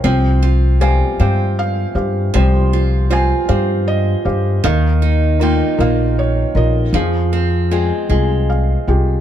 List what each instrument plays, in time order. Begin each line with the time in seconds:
Already playing: steel-string acoustic guitar C#4
0.04 upright bass C2, steel-string acoustic guitar F3, felt piano C4 C5 G5
0.43 steel-string acoustic guitar F4
0.81 felt piano G3 C5 F5 G#5, steel-string acoustic guitar C4 F4
1.20 upright bass G2, steel-string acoustic guitar C4, felt piano G4 C5 F5 G5
1.59 felt piano F5
1.95 upright bass G2, felt piano G4 C5 F5
2.34 upright bass C2, steel-string acoustic guitar F3, felt piano G3 C5 G5
2.73 steel-string acoustic guitar F4
3.10 steel-string acoustic guitar C4 F4, felt piano F4 C5 F5 G#5
3.48 upright bass G2, steel-string acoustic guitar C4, felt piano G4 C5 F5
3.88 felt piano D#5
4.25 upright bass G2, felt piano G4 C5 F5
4.64 upright bass D#2, felt piano D#3 A#4 F5, steel-string acoustic guitar D#3
5.02 steel-string acoustic guitar D#4
5.39 steel-string acoustic guitar A#3 D#4 F4, felt piano D#4 F4 A#4 G5
5.78 upright bass A#1, steel-string acoustic guitar A#3, felt piano D#4 F4 A#4 F5
6.19 felt piano C#5
6.55 upright bass A#1, felt piano D#4 F4 A#4 D#5
6.93 upright bass F2, steel-string acoustic guitar F3, felt piano F3 G#4 F5
7.33 steel-string acoustic guitar C4
7.71 steel-string acoustic guitar G#3 C4, felt piano F4 G#4 G5
8.09 upright bass C2, steel-string acoustic guitar G#3, felt piano F4 G#4
8.50 felt piano F5
8.87 upright bass C2, felt piano F4 G4 G#4 G5